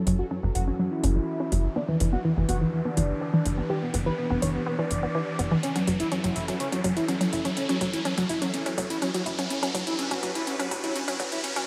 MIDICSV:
0, 0, Header, 1, 8, 480
1, 0, Start_track
1, 0, Tempo, 483871
1, 1748, Time_signature, 4, 2, 24, 8
1, 11574, End_track
2, 0, Start_track
2, 0, Title_t, "Ambient pad"
2, 0, Program_c, 0, 92
2, 0, Note_on_c, 0, 52, 80
2, 0, Note_on_c, 0, 61, 73
2, 0, Note_on_c, 0, 66, 72
2, 0, Note_on_c, 0, 69, 87
2, 1709, Note_off_c, 0, 61, 0
2, 1709, Note_off_c, 0, 69, 0
2, 1728, Note_off_c, 0, 66, 0
2, 1748, Note_on_c, 0, 62, 75
2, 1748, Note_on_c, 0, 67, 72
2, 1748, Note_on_c, 0, 71, 88
2, 5549, Note_off_c, 0, 62, 0
2, 5549, Note_off_c, 0, 71, 0
2, 5550, Note_off_c, 0, 67, 0
2, 5587, Note_on_c, 0, 61, 74
2, 5587, Note_on_c, 0, 64, 74
2, 5587, Note_on_c, 0, 69, 92
2, 9387, Note_off_c, 0, 52, 0
2, 9389, Note_off_c, 0, 61, 0
2, 9389, Note_off_c, 0, 64, 0
2, 9389, Note_off_c, 0, 69, 0
2, 9428, Note_on_c, 0, 66, 84
2, 9428, Note_on_c, 0, 71, 90
2, 9429, Note_on_c, 0, 62, 76
2, 9429, Note_on_c, 0, 67, 74
2, 11574, Note_off_c, 0, 62, 0
2, 11574, Note_off_c, 0, 66, 0
2, 11574, Note_off_c, 0, 67, 0
2, 11574, Note_off_c, 0, 71, 0
2, 11574, End_track
3, 0, Start_track
3, 0, Title_t, "Synth arpeggio sound"
3, 0, Program_c, 1, 84
3, 67, Note_on_c, 1, 54, 80
3, 133, Note_off_c, 1, 54, 0
3, 307, Note_on_c, 1, 61, 80
3, 372, Note_off_c, 1, 61, 0
3, 431, Note_on_c, 1, 54, 77
3, 493, Note_off_c, 1, 54, 0
3, 670, Note_on_c, 1, 61, 77
3, 732, Note_off_c, 1, 61, 0
3, 787, Note_on_c, 1, 54, 79
3, 853, Note_off_c, 1, 54, 0
3, 1028, Note_on_c, 1, 61, 75
3, 1093, Note_off_c, 1, 61, 0
3, 1150, Note_on_c, 1, 54, 75
3, 1212, Note_off_c, 1, 54, 0
3, 1390, Note_on_c, 1, 61, 74
3, 1452, Note_off_c, 1, 61, 0
3, 1506, Note_on_c, 1, 54, 77
3, 1572, Note_off_c, 1, 54, 0
3, 1747, Note_on_c, 1, 59, 79
3, 1812, Note_off_c, 1, 59, 0
3, 1870, Note_on_c, 1, 52, 77
3, 1932, Note_off_c, 1, 52, 0
3, 2110, Note_on_c, 1, 59, 74
3, 2172, Note_off_c, 1, 59, 0
3, 2227, Note_on_c, 1, 52, 83
3, 2293, Note_off_c, 1, 52, 0
3, 2467, Note_on_c, 1, 59, 77
3, 2532, Note_off_c, 1, 59, 0
3, 2589, Note_on_c, 1, 52, 75
3, 2652, Note_off_c, 1, 52, 0
3, 2830, Note_on_c, 1, 59, 77
3, 2892, Note_off_c, 1, 59, 0
3, 2947, Note_on_c, 1, 52, 74
3, 3012, Note_off_c, 1, 52, 0
3, 3187, Note_on_c, 1, 59, 82
3, 3253, Note_off_c, 1, 59, 0
3, 3310, Note_on_c, 1, 52, 77
3, 3372, Note_off_c, 1, 52, 0
3, 3550, Note_on_c, 1, 59, 79
3, 3612, Note_off_c, 1, 59, 0
3, 3667, Note_on_c, 1, 52, 82
3, 3732, Note_off_c, 1, 52, 0
3, 3907, Note_on_c, 1, 59, 77
3, 3972, Note_off_c, 1, 59, 0
3, 4030, Note_on_c, 1, 52, 77
3, 4092, Note_off_c, 1, 52, 0
3, 4270, Note_on_c, 1, 59, 78
3, 4332, Note_off_c, 1, 59, 0
3, 4388, Note_on_c, 1, 52, 73
3, 4453, Note_off_c, 1, 52, 0
3, 4627, Note_on_c, 1, 59, 85
3, 4692, Note_off_c, 1, 59, 0
3, 4750, Note_on_c, 1, 52, 82
3, 4812, Note_off_c, 1, 52, 0
3, 4990, Note_on_c, 1, 59, 78
3, 5052, Note_off_c, 1, 59, 0
3, 5107, Note_on_c, 1, 52, 83
3, 5172, Note_off_c, 1, 52, 0
3, 5346, Note_on_c, 1, 59, 74
3, 5412, Note_off_c, 1, 59, 0
3, 5470, Note_on_c, 1, 52, 79
3, 5532, Note_off_c, 1, 52, 0
3, 5710, Note_on_c, 1, 61, 70
3, 5772, Note_off_c, 1, 61, 0
3, 5827, Note_on_c, 1, 54, 74
3, 5892, Note_off_c, 1, 54, 0
3, 6067, Note_on_c, 1, 61, 78
3, 6133, Note_off_c, 1, 61, 0
3, 6190, Note_on_c, 1, 54, 74
3, 6252, Note_off_c, 1, 54, 0
3, 6431, Note_on_c, 1, 61, 69
3, 6493, Note_off_c, 1, 61, 0
3, 6671, Note_on_c, 1, 61, 73
3, 6733, Note_off_c, 1, 61, 0
3, 6788, Note_on_c, 1, 54, 76
3, 6853, Note_off_c, 1, 54, 0
3, 7027, Note_on_c, 1, 61, 73
3, 7093, Note_off_c, 1, 61, 0
3, 7150, Note_on_c, 1, 54, 72
3, 7212, Note_off_c, 1, 54, 0
3, 7391, Note_on_c, 1, 61, 74
3, 7452, Note_off_c, 1, 61, 0
3, 7631, Note_on_c, 1, 61, 74
3, 7693, Note_off_c, 1, 61, 0
3, 7748, Note_on_c, 1, 54, 74
3, 7813, Note_off_c, 1, 54, 0
3, 7988, Note_on_c, 1, 61, 80
3, 8053, Note_off_c, 1, 61, 0
3, 8112, Note_on_c, 1, 54, 76
3, 8173, Note_off_c, 1, 54, 0
3, 8351, Note_on_c, 1, 61, 69
3, 8413, Note_off_c, 1, 61, 0
3, 8591, Note_on_c, 1, 61, 79
3, 8653, Note_off_c, 1, 61, 0
3, 8708, Note_on_c, 1, 54, 77
3, 8773, Note_off_c, 1, 54, 0
3, 8949, Note_on_c, 1, 61, 80
3, 9013, Note_off_c, 1, 61, 0
3, 9071, Note_on_c, 1, 54, 71
3, 9133, Note_off_c, 1, 54, 0
3, 9312, Note_on_c, 1, 61, 78
3, 9373, Note_off_c, 1, 61, 0
3, 9551, Note_on_c, 1, 61, 74
3, 9613, Note_off_c, 1, 61, 0
3, 9668, Note_on_c, 1, 54, 79
3, 9733, Note_off_c, 1, 54, 0
3, 10031, Note_on_c, 1, 61, 80
3, 10092, Note_off_c, 1, 61, 0
3, 10148, Note_on_c, 1, 54, 75
3, 10213, Note_off_c, 1, 54, 0
3, 10510, Note_on_c, 1, 61, 80
3, 10572, Note_off_c, 1, 61, 0
3, 10628, Note_on_c, 1, 54, 82
3, 10693, Note_off_c, 1, 54, 0
3, 10990, Note_on_c, 1, 61, 75
3, 11052, Note_off_c, 1, 61, 0
3, 11107, Note_on_c, 1, 54, 79
3, 11172, Note_off_c, 1, 54, 0
3, 11470, Note_on_c, 1, 61, 78
3, 11532, Note_off_c, 1, 61, 0
3, 11574, End_track
4, 0, Start_track
4, 0, Title_t, "Analog synth lead"
4, 0, Program_c, 2, 81
4, 65, Note_on_c, 2, 54, 64
4, 142, Note_off_c, 2, 54, 0
4, 188, Note_on_c, 2, 66, 89
4, 261, Note_off_c, 2, 66, 0
4, 306, Note_on_c, 2, 54, 64
4, 383, Note_off_c, 2, 54, 0
4, 429, Note_on_c, 2, 54, 63
4, 502, Note_off_c, 2, 54, 0
4, 545, Note_on_c, 2, 66, 92
4, 622, Note_off_c, 2, 66, 0
4, 668, Note_on_c, 2, 54, 65
4, 741, Note_off_c, 2, 54, 0
4, 785, Note_on_c, 2, 54, 64
4, 862, Note_off_c, 2, 54, 0
4, 907, Note_on_c, 2, 64, 96
4, 1652, Note_off_c, 2, 64, 0
4, 1747, Note_on_c, 2, 62, 93
4, 1823, Note_off_c, 2, 62, 0
4, 1872, Note_on_c, 2, 52, 67
4, 1943, Note_off_c, 2, 52, 0
4, 1988, Note_on_c, 2, 52, 66
4, 2064, Note_off_c, 2, 52, 0
4, 2110, Note_on_c, 2, 66, 90
4, 2182, Note_off_c, 2, 66, 0
4, 2228, Note_on_c, 2, 52, 67
4, 2304, Note_off_c, 2, 52, 0
4, 2353, Note_on_c, 2, 52, 64
4, 2424, Note_off_c, 2, 52, 0
4, 2468, Note_on_c, 2, 66, 94
4, 2544, Note_off_c, 2, 66, 0
4, 2593, Note_on_c, 2, 52, 61
4, 2664, Note_off_c, 2, 52, 0
4, 2710, Note_on_c, 2, 52, 64
4, 2784, Note_off_c, 2, 52, 0
4, 2833, Note_on_c, 2, 62, 101
4, 3575, Note_off_c, 2, 62, 0
4, 3669, Note_on_c, 2, 67, 90
4, 3744, Note_off_c, 2, 67, 0
4, 3793, Note_on_c, 2, 59, 67
4, 3864, Note_off_c, 2, 59, 0
4, 3908, Note_on_c, 2, 59, 65
4, 3983, Note_off_c, 2, 59, 0
4, 4031, Note_on_c, 2, 71, 93
4, 4103, Note_off_c, 2, 71, 0
4, 4147, Note_on_c, 2, 59, 65
4, 4223, Note_off_c, 2, 59, 0
4, 4270, Note_on_c, 2, 59, 65
4, 4342, Note_off_c, 2, 59, 0
4, 4386, Note_on_c, 2, 73, 92
4, 4463, Note_off_c, 2, 73, 0
4, 4511, Note_on_c, 2, 59, 63
4, 4583, Note_off_c, 2, 59, 0
4, 4628, Note_on_c, 2, 59, 62
4, 4704, Note_off_c, 2, 59, 0
4, 4750, Note_on_c, 2, 74, 104
4, 5494, Note_off_c, 2, 74, 0
4, 5586, Note_on_c, 2, 61, 85
4, 5662, Note_off_c, 2, 61, 0
4, 5710, Note_on_c, 2, 54, 57
4, 5783, Note_off_c, 2, 54, 0
4, 5829, Note_on_c, 2, 54, 60
4, 5904, Note_off_c, 2, 54, 0
4, 5951, Note_on_c, 2, 64, 86
4, 6023, Note_off_c, 2, 64, 0
4, 6068, Note_on_c, 2, 54, 60
4, 6143, Note_off_c, 2, 54, 0
4, 6191, Note_on_c, 2, 54, 58
4, 6263, Note_off_c, 2, 54, 0
4, 6308, Note_on_c, 2, 64, 88
4, 6383, Note_off_c, 2, 64, 0
4, 6431, Note_on_c, 2, 54, 60
4, 6503, Note_off_c, 2, 54, 0
4, 6548, Note_on_c, 2, 61, 90
4, 6624, Note_off_c, 2, 61, 0
4, 6670, Note_on_c, 2, 54, 61
4, 6742, Note_off_c, 2, 54, 0
4, 6787, Note_on_c, 2, 54, 64
4, 6863, Note_off_c, 2, 54, 0
4, 6909, Note_on_c, 2, 64, 85
4, 6982, Note_off_c, 2, 64, 0
4, 7029, Note_on_c, 2, 54, 60
4, 7104, Note_off_c, 2, 54, 0
4, 7151, Note_on_c, 2, 54, 60
4, 7223, Note_off_c, 2, 54, 0
4, 7268, Note_on_c, 2, 64, 90
4, 7344, Note_off_c, 2, 64, 0
4, 7391, Note_on_c, 2, 54, 59
4, 7463, Note_off_c, 2, 54, 0
4, 7508, Note_on_c, 2, 61, 90
4, 7584, Note_off_c, 2, 61, 0
4, 7633, Note_on_c, 2, 54, 60
4, 7704, Note_off_c, 2, 54, 0
4, 7749, Note_on_c, 2, 54, 61
4, 7824, Note_off_c, 2, 54, 0
4, 7871, Note_on_c, 2, 64, 87
4, 7943, Note_off_c, 2, 64, 0
4, 7988, Note_on_c, 2, 54, 62
4, 8064, Note_off_c, 2, 54, 0
4, 8112, Note_on_c, 2, 54, 62
4, 8183, Note_off_c, 2, 54, 0
4, 8229, Note_on_c, 2, 64, 92
4, 8304, Note_off_c, 2, 64, 0
4, 8352, Note_on_c, 2, 54, 62
4, 8423, Note_off_c, 2, 54, 0
4, 8469, Note_on_c, 2, 61, 99
4, 8544, Note_off_c, 2, 61, 0
4, 8590, Note_on_c, 2, 54, 63
4, 8662, Note_off_c, 2, 54, 0
4, 8706, Note_on_c, 2, 54, 67
4, 8783, Note_off_c, 2, 54, 0
4, 8830, Note_on_c, 2, 64, 89
4, 8902, Note_off_c, 2, 64, 0
4, 8946, Note_on_c, 2, 54, 66
4, 9022, Note_off_c, 2, 54, 0
4, 9069, Note_on_c, 2, 54, 61
4, 9142, Note_off_c, 2, 54, 0
4, 9185, Note_on_c, 2, 64, 94
4, 9262, Note_off_c, 2, 64, 0
4, 9309, Note_on_c, 2, 54, 61
4, 9382, Note_off_c, 2, 54, 0
4, 9426, Note_on_c, 2, 61, 96
4, 9502, Note_off_c, 2, 61, 0
4, 9549, Note_on_c, 2, 54, 64
4, 9622, Note_off_c, 2, 54, 0
4, 9667, Note_on_c, 2, 54, 68
4, 9743, Note_off_c, 2, 54, 0
4, 9789, Note_on_c, 2, 64, 91
4, 9862, Note_off_c, 2, 64, 0
4, 9907, Note_on_c, 2, 61, 100
4, 9983, Note_off_c, 2, 61, 0
4, 10030, Note_on_c, 2, 54, 67
4, 10102, Note_off_c, 2, 54, 0
4, 10146, Note_on_c, 2, 54, 63
4, 10222, Note_off_c, 2, 54, 0
4, 10270, Note_on_c, 2, 64, 93
4, 10342, Note_off_c, 2, 64, 0
4, 10387, Note_on_c, 2, 61, 98
4, 10463, Note_off_c, 2, 61, 0
4, 10510, Note_on_c, 2, 54, 66
4, 10582, Note_off_c, 2, 54, 0
4, 10627, Note_on_c, 2, 54, 68
4, 10703, Note_off_c, 2, 54, 0
4, 10749, Note_on_c, 2, 64, 96
4, 10822, Note_off_c, 2, 64, 0
4, 10865, Note_on_c, 2, 61, 107
4, 10942, Note_off_c, 2, 61, 0
4, 10990, Note_on_c, 2, 54, 64
4, 11062, Note_off_c, 2, 54, 0
4, 11108, Note_on_c, 2, 54, 62
4, 11183, Note_off_c, 2, 54, 0
4, 11230, Note_on_c, 2, 64, 95
4, 11302, Note_off_c, 2, 64, 0
4, 11346, Note_on_c, 2, 61, 98
4, 11422, Note_off_c, 2, 61, 0
4, 11471, Note_on_c, 2, 54, 67
4, 11543, Note_off_c, 2, 54, 0
4, 11574, End_track
5, 0, Start_track
5, 0, Title_t, "Analog synth bass"
5, 0, Program_c, 3, 38
5, 67, Note_on_c, 3, 30, 101
5, 218, Note_off_c, 3, 30, 0
5, 429, Note_on_c, 3, 30, 94
5, 502, Note_off_c, 3, 30, 0
5, 547, Note_on_c, 3, 30, 76
5, 697, Note_off_c, 3, 30, 0
5, 1027, Note_on_c, 3, 30, 99
5, 1178, Note_off_c, 3, 30, 0
5, 1507, Note_on_c, 3, 30, 90
5, 1658, Note_off_c, 3, 30, 0
5, 1986, Note_on_c, 3, 30, 101
5, 2137, Note_off_c, 3, 30, 0
5, 2350, Note_on_c, 3, 30, 94
5, 2422, Note_off_c, 3, 30, 0
5, 2467, Note_on_c, 3, 30, 74
5, 2618, Note_off_c, 3, 30, 0
5, 2948, Note_on_c, 3, 30, 96
5, 3098, Note_off_c, 3, 30, 0
5, 3427, Note_on_c, 3, 30, 92
5, 3578, Note_off_c, 3, 30, 0
5, 3908, Note_on_c, 3, 30, 97
5, 4058, Note_off_c, 3, 30, 0
5, 4271, Note_on_c, 3, 30, 99
5, 4343, Note_off_c, 3, 30, 0
5, 4388, Note_on_c, 3, 30, 76
5, 4538, Note_off_c, 3, 30, 0
5, 4869, Note_on_c, 3, 30, 78
5, 5018, Note_off_c, 3, 30, 0
5, 5348, Note_on_c, 3, 30, 93
5, 5498, Note_off_c, 3, 30, 0
5, 5828, Note_on_c, 3, 30, 101
5, 5978, Note_off_c, 3, 30, 0
5, 6191, Note_on_c, 3, 30, 96
5, 6263, Note_off_c, 3, 30, 0
5, 6307, Note_on_c, 3, 30, 79
5, 6458, Note_off_c, 3, 30, 0
5, 6788, Note_on_c, 3, 30, 104
5, 6938, Note_off_c, 3, 30, 0
5, 7268, Note_on_c, 3, 30, 97
5, 7418, Note_off_c, 3, 30, 0
5, 7748, Note_on_c, 3, 30, 102
5, 7898, Note_off_c, 3, 30, 0
5, 8111, Note_on_c, 3, 30, 99
5, 8183, Note_off_c, 3, 30, 0
5, 8228, Note_on_c, 3, 30, 81
5, 8378, Note_off_c, 3, 30, 0
5, 8708, Note_on_c, 3, 30, 101
5, 8858, Note_off_c, 3, 30, 0
5, 9187, Note_on_c, 3, 30, 96
5, 9338, Note_off_c, 3, 30, 0
5, 9667, Note_on_c, 3, 30, 103
5, 9818, Note_off_c, 3, 30, 0
5, 10031, Note_on_c, 3, 30, 97
5, 10103, Note_off_c, 3, 30, 0
5, 10148, Note_on_c, 3, 30, 80
5, 10298, Note_off_c, 3, 30, 0
5, 10628, Note_on_c, 3, 30, 105
5, 10778, Note_off_c, 3, 30, 0
5, 11108, Note_on_c, 3, 30, 91
5, 11258, Note_off_c, 3, 30, 0
5, 11574, End_track
6, 0, Start_track
6, 0, Title_t, "Noise sweep"
6, 0, Program_c, 4, 103
6, 11347, Note_on_c, 4, 60, 78
6, 11574, Note_off_c, 4, 60, 0
6, 11574, End_track
7, 0, Start_track
7, 0, Title_t, "Riser"
7, 0, Program_c, 5, 103
7, 0, Note_on_c, 5, 60, 74
7, 11574, Note_off_c, 5, 60, 0
7, 11574, End_track
8, 0, Start_track
8, 0, Title_t, "Drums"
8, 67, Note_on_c, 9, 46, 106
8, 166, Note_off_c, 9, 46, 0
8, 547, Note_on_c, 9, 46, 97
8, 646, Note_off_c, 9, 46, 0
8, 1027, Note_on_c, 9, 46, 110
8, 1127, Note_off_c, 9, 46, 0
8, 1508, Note_on_c, 9, 46, 88
8, 1607, Note_off_c, 9, 46, 0
8, 1987, Note_on_c, 9, 46, 103
8, 2086, Note_off_c, 9, 46, 0
8, 2467, Note_on_c, 9, 46, 95
8, 2567, Note_off_c, 9, 46, 0
8, 2948, Note_on_c, 9, 46, 113
8, 3047, Note_off_c, 9, 46, 0
8, 3428, Note_on_c, 9, 46, 93
8, 3527, Note_off_c, 9, 46, 0
8, 3908, Note_on_c, 9, 46, 109
8, 4007, Note_off_c, 9, 46, 0
8, 4388, Note_on_c, 9, 46, 93
8, 4487, Note_off_c, 9, 46, 0
8, 4867, Note_on_c, 9, 46, 105
8, 4966, Note_off_c, 9, 46, 0
8, 5348, Note_on_c, 9, 46, 94
8, 5447, Note_off_c, 9, 46, 0
8, 5587, Note_on_c, 9, 42, 53
8, 5687, Note_off_c, 9, 42, 0
8, 5711, Note_on_c, 9, 42, 54
8, 5810, Note_off_c, 9, 42, 0
8, 5827, Note_on_c, 9, 46, 104
8, 5927, Note_off_c, 9, 46, 0
8, 5950, Note_on_c, 9, 42, 53
8, 6050, Note_off_c, 9, 42, 0
8, 6068, Note_on_c, 9, 42, 49
8, 6167, Note_off_c, 9, 42, 0
8, 6191, Note_on_c, 9, 42, 52
8, 6290, Note_off_c, 9, 42, 0
8, 6307, Note_on_c, 9, 46, 94
8, 6407, Note_off_c, 9, 46, 0
8, 6431, Note_on_c, 9, 42, 54
8, 6530, Note_off_c, 9, 42, 0
8, 6548, Note_on_c, 9, 42, 55
8, 6647, Note_off_c, 9, 42, 0
8, 6671, Note_on_c, 9, 42, 51
8, 6770, Note_off_c, 9, 42, 0
8, 6788, Note_on_c, 9, 46, 108
8, 6887, Note_off_c, 9, 46, 0
8, 6911, Note_on_c, 9, 42, 50
8, 7010, Note_off_c, 9, 42, 0
8, 7028, Note_on_c, 9, 42, 55
8, 7127, Note_off_c, 9, 42, 0
8, 7151, Note_on_c, 9, 42, 56
8, 7250, Note_off_c, 9, 42, 0
8, 7269, Note_on_c, 9, 46, 86
8, 7368, Note_off_c, 9, 46, 0
8, 7391, Note_on_c, 9, 42, 53
8, 7490, Note_off_c, 9, 42, 0
8, 7508, Note_on_c, 9, 42, 53
8, 7607, Note_off_c, 9, 42, 0
8, 7631, Note_on_c, 9, 42, 54
8, 7730, Note_off_c, 9, 42, 0
8, 7748, Note_on_c, 9, 46, 104
8, 7847, Note_off_c, 9, 46, 0
8, 7871, Note_on_c, 9, 42, 58
8, 7970, Note_off_c, 9, 42, 0
8, 7987, Note_on_c, 9, 42, 54
8, 8087, Note_off_c, 9, 42, 0
8, 8111, Note_on_c, 9, 42, 53
8, 8210, Note_off_c, 9, 42, 0
8, 8228, Note_on_c, 9, 46, 93
8, 8327, Note_off_c, 9, 46, 0
8, 8351, Note_on_c, 9, 42, 58
8, 8450, Note_off_c, 9, 42, 0
8, 8469, Note_on_c, 9, 42, 57
8, 8568, Note_off_c, 9, 42, 0
8, 8591, Note_on_c, 9, 42, 54
8, 8691, Note_off_c, 9, 42, 0
8, 8709, Note_on_c, 9, 46, 107
8, 8808, Note_off_c, 9, 46, 0
8, 8832, Note_on_c, 9, 42, 54
8, 8931, Note_off_c, 9, 42, 0
8, 8948, Note_on_c, 9, 42, 55
8, 9047, Note_off_c, 9, 42, 0
8, 9071, Note_on_c, 9, 42, 57
8, 9171, Note_off_c, 9, 42, 0
8, 9188, Note_on_c, 9, 46, 89
8, 9287, Note_off_c, 9, 46, 0
8, 9311, Note_on_c, 9, 42, 53
8, 9410, Note_off_c, 9, 42, 0
8, 9428, Note_on_c, 9, 42, 58
8, 9527, Note_off_c, 9, 42, 0
8, 9551, Note_on_c, 9, 42, 56
8, 9650, Note_off_c, 9, 42, 0
8, 9668, Note_on_c, 9, 46, 101
8, 9767, Note_off_c, 9, 46, 0
8, 9791, Note_on_c, 9, 42, 59
8, 9890, Note_off_c, 9, 42, 0
8, 9908, Note_on_c, 9, 42, 54
8, 10007, Note_off_c, 9, 42, 0
8, 10031, Note_on_c, 9, 42, 58
8, 10130, Note_off_c, 9, 42, 0
8, 10147, Note_on_c, 9, 46, 91
8, 10247, Note_off_c, 9, 46, 0
8, 10271, Note_on_c, 9, 42, 59
8, 10370, Note_off_c, 9, 42, 0
8, 10388, Note_on_c, 9, 42, 58
8, 10487, Note_off_c, 9, 42, 0
8, 10511, Note_on_c, 9, 42, 58
8, 10611, Note_off_c, 9, 42, 0
8, 10628, Note_on_c, 9, 46, 106
8, 10727, Note_off_c, 9, 46, 0
8, 10751, Note_on_c, 9, 42, 55
8, 10850, Note_off_c, 9, 42, 0
8, 10868, Note_on_c, 9, 42, 59
8, 10967, Note_off_c, 9, 42, 0
8, 10991, Note_on_c, 9, 42, 61
8, 11090, Note_off_c, 9, 42, 0
8, 11107, Note_on_c, 9, 46, 85
8, 11207, Note_off_c, 9, 46, 0
8, 11231, Note_on_c, 9, 42, 56
8, 11330, Note_off_c, 9, 42, 0
8, 11347, Note_on_c, 9, 42, 60
8, 11447, Note_off_c, 9, 42, 0
8, 11470, Note_on_c, 9, 42, 60
8, 11570, Note_off_c, 9, 42, 0
8, 11574, End_track
0, 0, End_of_file